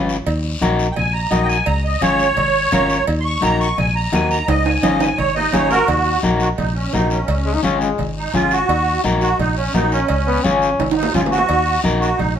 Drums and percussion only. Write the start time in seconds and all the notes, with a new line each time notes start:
0.09 short guiro
0.26 cowbell, high conga, long guiro
0.61 cowbell, high conga, short guiro
0.79 short guiro
0.96 cowbell, high conga, low conga, long guiro
1.31 cowbell, high conga, short guiro
1.49 short guiro
1.66 cowbell, high conga, long guiro
2.01 cowbell, high conga, short guiro
2.19 short guiro
2.37 cowbell, high conga, low conga, long guiro
2.72 cowbell, high conga, low conga, short guiro
2.90 short guiro
3.07 cowbell, high conga, long guiro
3.42 cowbell, high conga, short guiro
3.61 short guiro
3.78 cowbell, high conga, low conga, long guiro
4.13 cowbell, high conga, low timbale, short guiro
4.31 short guiro
4.48 cowbell, high conga, high timbale, long guiro
4.66 high timbale
4.83 cowbell, high conga, high timbale, short guiro
5.00 high timbale, short guiro
5.18 cowbell, high conga, low conga, long guiro
5.37 low timbale
5.53 cowbell, high conga, low timbale, short guiro
5.71 low timbale, short guiro
5.88 cowbell, high conga, low conga, long guiro
6.22 high conga, short guiro
6.40 short guiro
6.58 cowbell, high conga, low conga, long guiro
6.93 high conga, low conga, low timbale, short guiro
7.10 short guiro
7.28 cowbell, high conga, long guiro
7.64 high conga, short guiro
7.81 short guiro
7.98 cowbell, high conga, low conga, long guiro
8.34 high conga, low conga, short guiro
8.51 short guiro
8.69 cowbell, high conga, long guiro
9.04 high conga, short guiro
9.21 short guiro
9.39 cowbell, high conga, low conga, long guiro
9.75 high conga, low timbale, short guiro
9.92 short guiro
10.08 cowbell, high conga, long guiro
10.45 high conga, short guiro
10.62 short guiro
10.79 cowbell, high conga, low conga, high timbale, long guiro
10.91 high timbale
11.03 low timbale
11.14 high conga, low conga, short guiro
11.26 low timbale
11.32 short guiro
11.38 low timbale
11.49 cowbell, high conga, long guiro
11.84 high conga, short guiro
12.02 short guiro
12.19 cowbell, high conga, low conga, long guiro